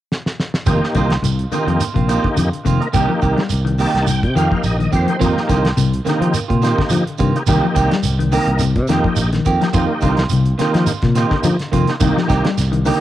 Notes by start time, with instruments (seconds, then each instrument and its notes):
0.11 snare
0.26 snare
0.39 snare
0.54 snare
0.66 fingered electric bass F1, clean electric guitar D#3 A#3 C4 F4, tonewheel organ A#3 D#4 G4, kick, closed hi-hat, shekere
0.84 snare
0.95 fingered electric bass C2, clean electric guitar D3 D#3 A#3 C4 F4, kick, closed hi-hat, shekere
1.10 snare, closed hi-hat
1.22 fingered electric bass C2, clean electric guitar C3, closed hi-hat, shekere
1.39 closed hi-hat
1.51 clean electric guitar D3 D#3 A#3 C4 F4, tonewheel organ A#3 D#4 G4, muted fingered electric bass stroke, closed hi-hat, shekere
1.67 fingered electric bass F2, clean electric guitar D#3 A#3 C4 F4, closed hi-hat
1.80 closed hi-hat, shekere
1.94 fingered electric bass A#1, clean electric guitar C3 A#3 C4 F4, kick, closed hi-hat
2.08 tonewheel organ A#3 D#4 G4, clean electric guitar A#3 C4 F4, muted clean electric guitar stroke, closed hi-hat, shekere
2.23 clean electric guitar D3, kick
2.36 fingered electric bass F2, clean electric guitar D3, closed hi-hat, shekere
2.53 closed hi-hat
2.65 fingered electric bass F1, clean electric guitar C3 D#3 A#3 C4 F4, kick, closed hi-hat, shekere
2.80 tonewheel organ A#3 D#4 A#4, closed hi-hat
2.93 fingered electric bass C2, clean electric guitar D#3 A#3 C4 G4, tonewheel organ A#3 D#4 G4, kick, closed hi-hat, shekere
3.09 clean electric guitar F3
3.22 fingered electric bass C2, clean electric guitar D#3 A#3 C4 G4, kick, closed hi-hat, shekere
3.37 clean electric guitar G3, snare, closed hi-hat
3.50 fingered electric bass C2, closed hi-hat, shekere
3.65 clean electric guitar D#3, closed hi-hat
3.79 clean electric guitar D#3 A#3 C4 G4, tonewheel organ A#3 D#4 G4 A5, open hi-hat, shekere
3.95 fingered electric bass C2, snare, closed hi-hat
4.07 clean electric guitar C3, tonewheel organ G5, closed hi-hat, shekere
4.23 fingered electric bass C3, kick, closed hi-hat
4.35 fingered electric bass F2, clean electric guitar D#3 A#3 C4 G4, tonewheel organ A#3 D#4 G4 F5, closed hi-hat, shekere
4.51 clean electric guitar F3, kick
4.63 fingered electric bass A#1, tonewheel organ D#5, closed hi-hat, shekere
4.79 clean electric guitar D#3, closed hi-hat
4.91 fingered electric bass F2, clean electric guitar D#3 A#3 C4 G4, kick, closed hi-hat, shekere
4.95 tonewheel organ C5
5.06 clean electric guitar F3, tonewheel organ A#3 D#4 G4, closed hi-hat
5.19 fingered electric bass F2, clean electric guitar D#3 F3 A#3 C4 F4, kick, closed hi-hat, shekere
5.24 tonewheel organ A#3 D#4 G4
5.37 snare
5.48 fingered electric bass C2, clean electric guitar D3 D#3 A#3 C4 F4, kick, snare, closed hi-hat, shekere
5.65 snare, closed hi-hat
5.77 fingered electric bass C2, clean electric guitar C3, closed hi-hat, shekere
5.93 closed hi-hat
6.05 clean electric guitar D3 D#3 A#3 C4, tonewheel organ A#3 D#4 G4, muted clean electric guitar stroke, muted fingered electric bass stroke, snare, closed hi-hat, shekere
6.20 clean electric guitar D#3 C4 F4, fingered electric bass F3, closed hi-hat
6.34 closed hi-hat, shekere
6.48 fingered electric bass A#2, clean electric guitar C3 A#3 C4 F4, kick, closed hi-hat
6.62 clean electric guitar D#3 A#3 C4 F4, tonewheel organ A#3 D#4 G4, snare, closed hi-hat, shekere
6.78 clean electric guitar D3, kick, snare
6.89 clean electric guitar D3, fingered electric bass F3, closed hi-hat, shekere
7.07 closed hi-hat
7.18 fingered electric bass G2, clean electric guitar C3 D#3 A#3 C4 F4, kick, closed hi-hat, shekere
7.36 tonewheel organ A#3 D#4 G4, closed hi-hat
7.46 fingered electric bass C2, clean electric guitar D#3 A#3 C4 G4, tonewheel organ A#3 D#4 G4, kick, closed hi-hat, shekere
7.63 clean electric guitar F3
7.74 fingered electric bass C2, clean electric guitar D#3 A#3 C4 G4, kick, closed hi-hat, shekere
7.91 clean electric guitar G3, snare, closed hi-hat
8.03 fingered electric bass C2, closed hi-hat, shekere
8.19 clean electric guitar D#3, closed hi-hat
8.32 clean electric guitar D3 D#3 A#3 C4 G4, tonewheel organ A#3 D#4 A#4, open hi-hat, shekere
8.47 fingered electric bass C2, closed hi-hat
8.59 clean electric guitar C3, closed hi-hat, shekere
8.76 fingered electric bass C3, kick, closed hi-hat
8.88 fingered electric bass F2, clean electric guitar D#3 A#3 C4 G4, tonewheel organ A#3 D#4 G4, snare, closed hi-hat, shekere
9.05 clean electric guitar F3, kick
9.16 fingered electric bass A#1, closed hi-hat, shekere
9.33 clean electric guitar D#3, snare, closed hi-hat
9.45 fingered electric bass F2, clean electric guitar D#3 A#3 C4 G4, kick, closed hi-hat, shekere
9.61 clean electric guitar F3, tonewheel organ A#3 D#4 G4, snare, closed hi-hat
9.73 fingered electric bass F2, clean electric guitar D#3 A#3 C4 F4, tonewheel organ A#3 D#4 G4, kick, closed hi-hat, shekere
10.01 fingered electric bass C2, clean electric guitar D3 D#3 A#3 C4 F4, kick, closed hi-hat, shekere
10.17 snare, closed hi-hat
10.29 fingered electric bass C2, clean electric guitar C3, closed hi-hat, shekere
10.45 closed hi-hat
10.58 clean electric guitar D3 D#3 A#3 C4 F4, tonewheel organ A#3 D#4 G4, muted fingered electric bass stroke, snare, closed hi-hat, shekere
10.73 clean electric guitar D#3 A#3 C4 F4, fingered electric bass F3, snare, closed hi-hat
10.86 closed hi-hat, shekere
11.02 fingered electric bass A#2, clean electric guitar C3, kick, snare, closed hi-hat
11.15 clean electric guitar D#3 C4 F4, tonewheel organ A#3 D#4 G4, snare, closed hi-hat, shekere
11.31 clean electric guitar D3, kick, snare
11.43 clean electric guitar D3, fingered electric bass F3, closed hi-hat, shekere
11.59 snare, closed hi-hat
11.72 fingered electric bass F2, clean electric guitar C3 D#3 A#3 C4 F4, kick, closed hi-hat, shekere
11.88 tonewheel organ A#3 D#4 G4, snare, closed hi-hat
12.00 fingered electric bass C2, clean electric guitar D#3 A#3 C4, tonewheel organ A#3 D#4 G4, muted clean electric guitar stroke, kick, closed hi-hat, shekere
12.17 clean electric guitar F3, snare
12.28 fingered electric bass C2, clean electric guitar D#3 A#3 C4 G4, kick, snare, closed hi-hat, shekere
12.45 clean electric guitar G3, snare, closed hi-hat
12.58 fingered electric bass C2, snare, closed hi-hat, shekere
12.72 clean electric guitar D#3, closed hi-hat
12.85 clean electric guitar D3 D#3 A#3 C4 G4, tonewheel organ A#3 D#4 G4, open hi-hat, shekere